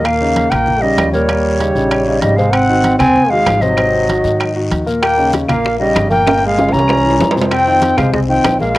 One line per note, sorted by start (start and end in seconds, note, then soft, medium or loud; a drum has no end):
0.00 0.46 D#2 medium
0.00 0.15 A#2 medium
0.00 0.15 A#3 medium
0.00 0.15 A#4 medium
0.05 0.51 A#3 medium
0.05 0.52 F5 loud
0.05 high conga soft
0.05 high timbale medium
0.05 long guiro medium
0.05 claves medium
0.21 0.46 C#3 medium
0.21 0.46 C#4 medium
0.21 0.47 D#4 medium
0.21 high conga soft
0.36 high conga loud
0.36 high timbale medium
0.36 short guiro medium
0.50 0.95 A#1 medium
0.50 0.77 A#2 medium
0.50 0.82 A#3 medium
0.50 0.78 A#3 medium
0.50 0.78 A#4 medium
0.50 0.83 G5 medium
0.50 high conga soft
0.50 low conga medium
0.50 high timbale medium
0.50 short guiro medium
0.50 claves medium
0.66 high conga soft
0.66 low conga medium
0.66 long guiro medium
0.81 1.08 C#3 medium
0.81 1.11 G3 medium
0.81 1.08 C#4 medium
0.81 1.09 D#4 medium
0.81 1.12 D#5 loud
0.81 high conga soft
0.97 1.70 D#2 loud
0.97 high conga medium
0.97 high timbale loud
0.97 low timbale medium
0.97 short guiro medium
0.97 claves medium
1.12 1.26 A#2 medium
1.12 2.21 G3 medium
1.12 1.27 A#3 medium
1.12 1.27 A#4 medium
1.12 2.22 C#5 medium
1.12 high conga medium
1.12 short guiro medium
1.29 1.55 A#2 medium
1.29 1.55 A#3 medium
1.29 1.55 A#4 medium
1.29 high conga soft
1.29 high timbale medium
1.29 long guiro medium
1.29 claves medium
1.45 high conga soft
1.60 1.73 C#3 medium
1.60 1.73 C#4 medium
1.60 1.73 D#4 medium
1.60 high conga medium
1.60 high timbale medium
1.60 short guiro medium
1.75 2.19 A#1 medium
1.75 2.01 C#3 medium
1.75 2.01 C#4 medium
1.75 2.02 D#4 medium
1.75 high conga soft
1.75 short guiro medium
1.91 high conga soft
1.91 high timbale loud
1.91 long guiro medium
1.91 claves medium
2.07 2.33 C#3 medium
2.07 2.33 C#4 medium
2.07 2.33 D#4 medium
2.07 high conga soft
2.20 2.94 G#1 loud
2.20 2.38 G3 medium
2.20 2.38 D#5 medium
2.20 high conga medium
2.20 high timbale medium
2.20 short guiro medium
2.36 2.64 C3 medium
2.36 2.53 G#3 medium
2.36 2.64 C4 medium
2.36 2.64 C5 medium
2.36 2.53 F5 medium
2.36 short guiro medium
2.52 2.98 C4 medium
2.52 2.99 F#5 loud
2.52 high conga soft
2.52 high timbale loud
2.52 long guiro medium
2.52 claves medium
2.69 2.95 D#3 medium
2.69 2.95 D#4 medium
2.69 2.95 F#4 medium
2.69 high conga soft
2.84 high conga loud
2.84 high timbale medium
2.84 short guiro medium
2.99 3.44 D#2 medium
2.99 3.26 C3 medium
2.99 3.30 C4 loud
2.99 3.26 C4 medium
2.99 3.26 C5 medium
2.99 3.32 G#5 loud
2.99 high conga soft
2.99 low conga medium
2.99 high timbale medium
2.99 short guiro medium
2.99 claves medium
3.16 high conga soft
3.16 low conga medium
3.16 long guiro medium
3.29 3.56 D#3 medium
3.29 3.64 G#3 medium
3.29 3.57 D#4 medium
3.29 3.57 F#4 medium
3.29 3.63 F5 loud
3.29 high conga soft
3.46 4.19 G#1 loud
3.46 high conga medium
3.46 high timbale loud
3.46 low timbale medium
3.46 short guiro medium
3.46 claves medium
3.62 3.75 C3 medium
3.62 4.60 F#3 medium
3.62 3.75 C4 medium
3.62 3.75 C5 medium
3.62 4.59 D#5 loud
3.62 high conga medium
3.62 short guiro medium
3.77 4.03 C3 medium
3.77 4.03 C4 medium
3.77 4.04 C5 medium
3.77 high conga soft
3.77 high timbale loud
3.77 long guiro medium
3.77 claves medium
3.94 high conga soft
4.08 4.21 D#3 medium
4.08 4.22 D#4 medium
4.08 4.22 F#4 medium
4.08 high conga medium
4.08 high timbale medium
4.08 short guiro medium
4.24 4.68 G#2 medium
4.24 4.50 D#3 medium
4.24 4.50 D#4 medium
4.24 4.50 F#4 medium
4.24 high conga soft
4.24 short guiro medium
4.40 high conga soft
4.40 high timbale loud
4.40 long guiro medium
4.40 claves medium
4.55 4.81 D#3 medium
4.55 4.81 D#4 medium
4.55 4.81 F#4 medium
4.55 high conga soft
4.71 5.43 D#2 loud
4.71 high conga medium
4.71 high timbale medium
4.71 short guiro medium
4.86 5.12 A#2 medium
4.86 5.12 A#3 medium
4.86 5.12 A#4 medium
4.86 short guiro medium
5.02 5.31 A#3 medium
5.02 5.31 G5 medium
5.02 high bongo medium
5.02 high conga soft
5.02 high timbale loud
5.02 long guiro medium
5.02 claves medium
5.17 5.43 C#3 medium
5.17 5.43 C#4 medium
5.17 5.43 D#4 medium
5.17 high bongo soft
5.17 high conga soft
5.33 high bongo medium
5.33 high conga medium
5.33 high timbale medium
5.33 short guiro medium
5.48 5.92 A#1 medium
5.48 5.74 A#2 medium
5.48 5.78 A#3 medium
5.48 5.74 A#3 medium
5.48 5.75 A#4 medium
5.48 5.78 F5 medium
5.48 high bongo soft
5.48 high conga soft
5.48 low conga medium
5.48 high timbale medium
5.48 short guiro medium
5.48 claves medium
5.64 high bongo medium
5.64 high conga soft
5.64 long guiro medium
5.79 6.06 C#3 medium
5.79 6.09 G3 medium
5.79 6.06 C#4 medium
5.79 6.06 D#4 medium
5.79 6.09 D#5 loud
5.79 high conga soft
5.95 6.68 G1 loud
5.95 high bongo medium
5.95 low bongo medium
5.95 high conga medium
5.95 high timbale loud
5.95 short guiro medium
5.95 claves medium
6.10 6.24 A#2 medium
6.10 6.44 A#3 medium
6.10 6.24 A#3 medium
6.10 6.24 A#4 medium
6.10 6.45 G5 loud
6.10 high bongo soft
6.10 high conga medium
6.10 short guiro medium
6.26 6.52 A#2 medium
6.26 6.52 A#3 medium
6.26 6.52 A#4 medium
6.26 high bongo medium
6.26 high conga soft
6.26 high timbale loud
6.26 long guiro medium
6.26 claves medium
6.38 high conga soft
6.38 high timbale medium
6.44 6.73 G#3 medium
6.44 6.74 F5 loud
6.44 high bongo soft
6.57 6.71 C#3 medium
6.57 6.71 C#4 medium
6.57 6.71 F4 medium
6.57 high bongo medium
6.57 high conga medium
6.57 high timbale medium
6.57 short guiro medium
6.68 7.35 C#4 medium
6.68 7.35 A#5 loud
6.68 low timbale medium
6.73 7.17 C2 loud
6.73 6.99 E3 medium
6.73 6.99 E4 medium
6.73 7.00 G4 medium
6.73 high bongo soft
6.73 high conga soft
6.73 short guiro medium
6.79 high timbale medium
6.88 high bongo medium
6.88 low timbale loud
6.88 long guiro medium
6.88 claves medium
7.04 7.30 E3 medium
7.04 7.30 E4 medium
7.04 7.30 G4 medium
7.04 high bongo soft
7.04 high conga soft
7.10 low timbale medium
7.20 7.92 F2 medium
7.20 high bongo medium
7.20 low bongo loud
7.20 high conga medium
7.20 low timbale medium
7.20 short guiro medium
7.31 low timbale loud
7.36 7.62 C3 medium
7.36 7.62 C4 medium
7.36 7.62 C5 medium
7.36 short guiro medium
7.42 low timbale loud
7.50 7.99 C4 loud
7.50 7.99 G5 loud
7.50 high bongo medium
7.50 high conga soft
7.50 high timbale loud
7.50 long guiro medium
7.50 claves medium
7.66 7.93 D#3 medium
7.66 7.93 D#4 medium
7.66 7.93 F4 medium
7.66 high bongo soft
7.66 high conga soft
7.82 high bongo medium
7.82 high conga loud
7.82 high timbale medium
7.82 short guiro medium
7.97 8.41 C2 medium
7.97 8.23 C3 medium
7.97 8.12 G#3 medium
7.97 8.23 C4 medium
7.97 8.24 C5 medium
7.97 8.13 F5 medium
7.97 high bongo soft
7.97 high conga soft
7.97 low conga medium
7.97 high timbale medium
7.97 short guiro medium
7.97 claves medium
8.13 8.20 G#3 medium
8.13 8.20 D#5 loud
8.13 high bongo medium
8.13 high conga soft
8.13 low conga medium
8.13 long guiro medium
8.29 8.54 D#3 medium
8.29 8.58 C4 medium
8.29 8.54 D#4 medium
8.29 8.55 F4 medium
8.29 8.58 G5 loud
8.29 high conga soft
8.44 8.78 A#1 loud
8.44 high bongo medium
8.44 low bongo medium
8.44 high conga medium
8.44 high timbale loud
8.44 low timbale medium
8.44 short guiro medium
8.44 claves medium
8.60 8.73 A#2 medium
8.60 8.78 G#3 medium
8.60 8.73 A#3 medium
8.60 8.74 A#4 medium
8.60 8.78 F5 medium
8.60 high bongo soft
8.60 high conga medium
8.60 short guiro medium
8.75 high bongo medium